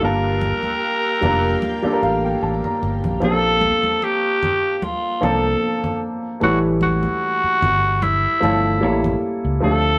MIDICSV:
0, 0, Header, 1, 7, 480
1, 0, Start_track
1, 0, Key_signature, -2, "major"
1, 0, Tempo, 800000
1, 11, Time_signature, 4, 2, 24, 8
1, 5992, End_track
2, 0, Start_track
2, 0, Title_t, "String machine"
2, 0, Program_c, 0, 50
2, 8, Note_on_c, 0, 77, 69
2, 10, Note_on_c, 0, 70, 65
2, 10, Note_on_c, 0, 79, 80
2, 11, Note_on_c, 0, 67, 78
2, 1910, Note_off_c, 0, 77, 0
2, 1911, Note_off_c, 0, 79, 0
2, 1912, Note_off_c, 0, 67, 0
2, 1912, Note_off_c, 0, 70, 0
2, 5992, End_track
3, 0, Start_track
3, 0, Title_t, "Tenor saxophone"
3, 0, Program_c, 1, 66
3, 25, Note_on_c, 1, 70, 117
3, 1434, Note_off_c, 1, 70, 0
3, 1945, Note_on_c, 1, 69, 121
3, 2421, Note_on_c, 1, 67, 97
3, 2430, Note_off_c, 1, 69, 0
3, 2865, Note_off_c, 1, 67, 0
3, 2865, Note_on_c, 1, 67, 66
3, 2902, Note_on_c, 1, 65, 91
3, 2911, Note_off_c, 1, 67, 0
3, 3141, Note_on_c, 1, 69, 103
3, 3150, Note_off_c, 1, 65, 0
3, 3616, Note_off_c, 1, 69, 0
3, 3861, Note_on_c, 1, 66, 115
3, 3957, Note_off_c, 1, 66, 0
3, 4098, Note_on_c, 1, 66, 126
3, 4814, Note_on_c, 1, 64, 98
3, 4823, Note_off_c, 1, 66, 0
3, 5532, Note_off_c, 1, 64, 0
3, 5784, Note_on_c, 1, 69, 106
3, 5992, Note_off_c, 1, 69, 0
3, 5992, End_track
4, 0, Start_track
4, 0, Title_t, "Upright piano"
4, 0, Program_c, 2, 0
4, 0, Control_c, 2, 64, 127
4, 3, Note_on_c, 2, 55, 64
4, 9, Note_on_c, 2, 58, 64
4, 15, Note_on_c, 2, 62, 62
4, 19, Control_c, 2, 64, 0
4, 22, Note_on_c, 2, 65, 64
4, 28, Note_on_c, 2, 81, 72
4, 138, Control_c, 2, 64, 127
4, 594, Note_off_c, 2, 55, 0
4, 597, Note_off_c, 2, 58, 0
4, 600, Note_off_c, 2, 62, 0
4, 603, Note_off_c, 2, 65, 0
4, 606, Note_off_c, 2, 81, 0
4, 726, Note_on_c, 2, 55, 82
4, 733, Note_on_c, 2, 58, 76
4, 739, Note_on_c, 2, 62, 77
4, 746, Note_on_c, 2, 65, 73
4, 752, Note_on_c, 2, 70, 100
4, 1022, Note_off_c, 2, 55, 0
4, 1025, Note_off_c, 2, 58, 0
4, 1029, Note_off_c, 2, 62, 0
4, 1032, Note_off_c, 2, 65, 0
4, 1035, Note_off_c, 2, 70, 0
4, 1094, Note_on_c, 2, 55, 85
4, 1101, Note_on_c, 2, 58, 80
4, 1105, Note_on_c, 2, 62, 79
4, 1112, Note_on_c, 2, 65, 74
4, 1118, Note_on_c, 2, 69, 74
4, 1145, Note_off_c, 2, 69, 0
4, 1157, Note_on_c, 2, 70, 94
4, 1217, Note_on_c, 2, 77, 67
4, 1336, Note_off_c, 2, 77, 0
4, 1348, Note_on_c, 2, 79, 67
4, 1447, Note_off_c, 2, 79, 0
4, 1456, Note_on_c, 2, 81, 64
4, 1575, Note_off_c, 2, 81, 0
4, 1587, Note_on_c, 2, 82, 70
4, 1768, Note_off_c, 2, 55, 0
4, 1772, Note_off_c, 2, 58, 0
4, 1774, Note_off_c, 2, 62, 0
4, 1778, Note_off_c, 2, 65, 0
4, 1800, Note_off_c, 2, 70, 0
4, 1910, Note_off_c, 2, 82, 0
4, 1921, Note_on_c, 2, 53, 71
4, 1928, Note_on_c, 2, 58, 67
4, 1934, Note_on_c, 2, 60, 69
4, 1939, Control_c, 2, 64, 0
4, 1940, Note_on_c, 2, 62, 66
4, 1947, Note_on_c, 2, 67, 65
4, 1981, Note_off_c, 2, 67, 0
4, 1987, Note_on_c, 2, 69, 82
4, 2025, Control_c, 2, 64, 127
4, 2702, Note_off_c, 2, 53, 0
4, 2705, Note_off_c, 2, 58, 0
4, 2708, Note_off_c, 2, 60, 0
4, 2711, Note_off_c, 2, 62, 0
4, 2734, Note_off_c, 2, 69, 0
4, 3125, Note_on_c, 2, 53, 74
4, 3129, Note_on_c, 2, 58, 68
4, 3135, Note_on_c, 2, 60, 67
4, 3141, Note_on_c, 2, 62, 68
4, 3147, Note_on_c, 2, 69, 84
4, 3715, Note_off_c, 2, 53, 0
4, 3717, Note_off_c, 2, 58, 0
4, 3720, Note_off_c, 2, 60, 0
4, 3723, Note_off_c, 2, 62, 0
4, 3726, Note_off_c, 2, 69, 0
4, 3841, Note_on_c, 2, 52, 70
4, 3846, Note_on_c, 2, 57, 66
4, 3853, Note_on_c, 2, 61, 68
4, 3860, Control_c, 2, 64, 0
4, 3860, Note_on_c, 2, 64, 66
4, 3864, Note_on_c, 2, 55, 80
4, 3944, Control_c, 2, 64, 127
4, 4622, Note_off_c, 2, 52, 0
4, 4624, Note_off_c, 2, 57, 0
4, 4628, Note_off_c, 2, 61, 0
4, 4631, Note_off_c, 2, 64, 0
4, 4633, Note_off_c, 2, 55, 0
4, 5042, Note_on_c, 2, 53, 81
4, 5046, Note_on_c, 2, 57, 73
4, 5053, Note_on_c, 2, 61, 65
4, 5061, Note_on_c, 2, 64, 70
4, 5066, Note_on_c, 2, 69, 85
4, 5282, Note_on_c, 2, 55, 75
4, 5284, Note_off_c, 2, 61, 0
4, 5287, Note_off_c, 2, 53, 0
4, 5287, Note_on_c, 2, 58, 69
4, 5289, Note_off_c, 2, 57, 0
4, 5291, Note_off_c, 2, 64, 0
4, 5293, Note_on_c, 2, 61, 68
4, 5297, Note_off_c, 2, 69, 0
4, 5300, Control_c, 2, 64, 0
4, 5300, Note_on_c, 2, 64, 69
4, 5306, Note_on_c, 2, 69, 80
4, 5416, Control_c, 2, 64, 127
4, 5680, Note_off_c, 2, 55, 0
4, 5683, Note_off_c, 2, 58, 0
4, 5686, Note_off_c, 2, 61, 0
4, 5689, Note_off_c, 2, 64, 0
4, 5692, Note_off_c, 2, 69, 0
4, 5762, Note_on_c, 2, 53, 76
4, 5768, Note_on_c, 2, 57, 70
4, 5774, Note_on_c, 2, 60, 67
4, 5779, Control_c, 2, 64, 0
4, 5780, Note_on_c, 2, 62, 66
4, 5786, Note_on_c, 2, 67, 66
4, 5821, Note_off_c, 2, 67, 0
4, 5825, Note_on_c, 2, 69, 81
4, 5894, Control_c, 2, 64, 127
4, 5992, Note_off_c, 2, 53, 0
4, 5992, Note_off_c, 2, 57, 0
4, 5992, Note_off_c, 2, 60, 0
4, 5992, Note_off_c, 2, 62, 0
4, 5992, Note_off_c, 2, 69, 0
4, 5992, End_track
5, 0, Start_track
5, 0, Title_t, "Fingered electric bass"
5, 0, Program_c, 3, 33
5, 17, Note_on_c, 3, 31, 104
5, 307, Note_off_c, 3, 31, 0
5, 736, Note_on_c, 3, 29, 89
5, 923, Note_off_c, 3, 29, 0
5, 1216, Note_on_c, 3, 33, 78
5, 1403, Note_off_c, 3, 33, 0
5, 1456, Note_on_c, 3, 33, 92
5, 1557, Note_off_c, 3, 33, 0
5, 1696, Note_on_c, 3, 31, 89
5, 1797, Note_off_c, 3, 31, 0
5, 1825, Note_on_c, 3, 34, 82
5, 1910, Note_off_c, 3, 34, 0
5, 1934, Note_on_c, 3, 34, 98
5, 2225, Note_off_c, 3, 34, 0
5, 3136, Note_on_c, 3, 36, 84
5, 3323, Note_off_c, 3, 36, 0
5, 3855, Note_on_c, 3, 33, 105
5, 4232, Note_off_c, 3, 33, 0
5, 4574, Note_on_c, 3, 31, 94
5, 4951, Note_off_c, 3, 31, 0
5, 5056, Note_on_c, 3, 31, 86
5, 5295, Note_off_c, 3, 31, 0
5, 5295, Note_on_c, 3, 33, 99
5, 5483, Note_off_c, 3, 33, 0
5, 5667, Note_on_c, 3, 37, 89
5, 5751, Note_off_c, 3, 37, 0
5, 5777, Note_on_c, 3, 38, 110
5, 5992, Note_off_c, 3, 38, 0
5, 5992, End_track
6, 0, Start_track
6, 0, Title_t, "Muted fingered electric bass strokes"
6, 1105, Note_on_c, 9, 29, 45
6, 1165, Note_off_c, 9, 29, 0
6, 4464, Note_on_c, 9, 29, 44
6, 4524, Note_off_c, 9, 29, 0
6, 5992, End_track
7, 0, Start_track
7, 0, Title_t, "Drums"
7, 248, Note_on_c, 9, 62, 33
7, 248, Note_on_c, 9, 63, 67
7, 308, Note_off_c, 9, 62, 0
7, 308, Note_off_c, 9, 63, 0
7, 377, Note_on_c, 9, 63, 59
7, 437, Note_off_c, 9, 63, 0
7, 735, Note_on_c, 9, 62, 29
7, 735, Note_on_c, 9, 64, 68
7, 795, Note_off_c, 9, 62, 0
7, 795, Note_off_c, 9, 64, 0
7, 973, Note_on_c, 9, 62, 31
7, 973, Note_on_c, 9, 63, 71
7, 1033, Note_off_c, 9, 62, 0
7, 1033, Note_off_c, 9, 63, 0
7, 1219, Note_on_c, 9, 62, 29
7, 1279, Note_off_c, 9, 62, 0
7, 1585, Note_on_c, 9, 64, 55
7, 1645, Note_off_c, 9, 64, 0
7, 1697, Note_on_c, 9, 62, 31
7, 1757, Note_off_c, 9, 62, 0
7, 1823, Note_on_c, 9, 64, 67
7, 1883, Note_off_c, 9, 64, 0
7, 1930, Note_on_c, 9, 62, 31
7, 1990, Note_off_c, 9, 62, 0
7, 2167, Note_on_c, 9, 62, 33
7, 2167, Note_on_c, 9, 63, 74
7, 2227, Note_off_c, 9, 62, 0
7, 2227, Note_off_c, 9, 63, 0
7, 2300, Note_on_c, 9, 63, 65
7, 2360, Note_off_c, 9, 63, 0
7, 2413, Note_on_c, 9, 62, 31
7, 2473, Note_off_c, 9, 62, 0
7, 2656, Note_on_c, 9, 62, 33
7, 2656, Note_on_c, 9, 64, 75
7, 2716, Note_off_c, 9, 62, 0
7, 2716, Note_off_c, 9, 64, 0
7, 2894, Note_on_c, 9, 62, 32
7, 2894, Note_on_c, 9, 63, 71
7, 2954, Note_off_c, 9, 62, 0
7, 2954, Note_off_c, 9, 63, 0
7, 3139, Note_on_c, 9, 62, 34
7, 3199, Note_off_c, 9, 62, 0
7, 3503, Note_on_c, 9, 64, 66
7, 3563, Note_off_c, 9, 64, 0
7, 3848, Note_on_c, 9, 62, 31
7, 3908, Note_off_c, 9, 62, 0
7, 4085, Note_on_c, 9, 63, 77
7, 4145, Note_off_c, 9, 63, 0
7, 4217, Note_on_c, 9, 63, 65
7, 4277, Note_off_c, 9, 63, 0
7, 4574, Note_on_c, 9, 62, 35
7, 4574, Note_on_c, 9, 64, 72
7, 4634, Note_off_c, 9, 62, 0
7, 4634, Note_off_c, 9, 64, 0
7, 4813, Note_on_c, 9, 62, 33
7, 4813, Note_on_c, 9, 63, 76
7, 4873, Note_off_c, 9, 62, 0
7, 4873, Note_off_c, 9, 63, 0
7, 5059, Note_on_c, 9, 62, 34
7, 5119, Note_off_c, 9, 62, 0
7, 5426, Note_on_c, 9, 64, 66
7, 5486, Note_off_c, 9, 64, 0
7, 5992, End_track
0, 0, End_of_file